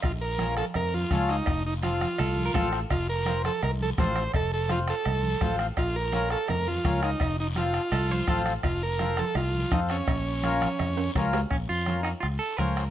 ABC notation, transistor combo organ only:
X:1
M:4/4
L:1/8
Q:1/4=167
K:Bbm
V:1 name="Transistor combo organ"
F B2 =A B F2 E- | E E F4- F z | F B2 =A B A c2 | =A A F A4 z |
F B2 =A B F2 E- | E E F4- F z | F B2 =A F2 E D- | D6 z2 |
z8 |]